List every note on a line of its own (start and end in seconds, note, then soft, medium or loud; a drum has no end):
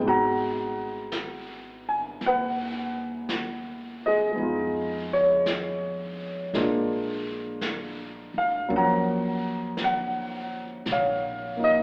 0.00 2.16 G#1 medium
0.00 4.30 G#3 soft
0.00 4.34 B3 soft
0.00 4.38 D#4 soft
0.00 brush sweep soft
0.07 4.39 F#4 medium
0.07 2.19 F#5 medium
0.07 1.91 A#5 medium
1.12 brush sweep soft
1.12 snare soft
1.12 hi-hat pedal medium
1.89 2.24 G#5 medium
2.21 4.34 D#2 medium
2.21 brush sweep soft
2.21 snare soft
2.26 4.37 B4 medium
2.26 3.99 F#5 medium
3.29 brush sweep soft
3.29 snare soft
3.29 hi-hat pedal soft
4.06 6.16 G#4 medium
4.06 5.07 D#5 medium
4.32 6.51 G#3 soft
4.32 6.53 B3 soft
4.38 6.50 F2 medium
4.38 6.55 D#4 soft
4.38 brush sweep soft
4.42 6.54 F4 soft
5.13 6.15 C#5 medium
5.46 brush sweep soft
5.46 snare soft
5.46 hi-hat pedal soft
6.53 8.28 A#1 medium
6.53 8.70 G#3 soft
6.53 8.69 A#3 soft
6.53 8.70 D4 soft
6.53 8.71 F4 medium
6.53 brush sweep soft
6.53 snare soft
7.61 brush sweep soft
7.61 snare soft
7.61 hi-hat pedal soft
8.34 8.68 D2 medium
8.34 8.73 F5 medium
8.68 10.82 D#2 medium
8.68 11.83 F#3 soft
8.68 11.55 A#3 soft
8.68 11.83 C#4 soft
8.68 brush sweep soft
8.74 11.83 F3 medium
8.74 9.83 F#5 medium
8.74 9.77 A#5 medium
9.77 brush sweep soft
9.77 snare soft
9.77 hi-hat pedal soft
9.84 10.92 F#5 medium
10.86 11.83 A#1 medium
10.86 brush sweep soft
10.86 snare soft
10.92 11.83 C#5 medium
10.92 11.56 F5 medium
11.57 11.83 A#3 soft
11.57 11.83 D#4 soft
11.64 11.83 D#5 medium